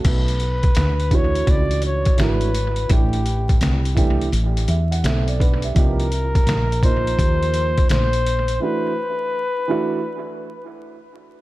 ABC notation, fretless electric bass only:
X:1
M:4/4
L:1/16
Q:"Swing 16ths" 1/4=84
K:Clyd
V:1 name="Fretless electric bass" clef=bass
B,,,4 D,,4 ^C,,3 z ^G,,,4 | A,,,4 C,,4 A,,,2 E,,2 B,,,4 | C,,4 _B,,,4 _E,,3 z B,,,4 | z16 |]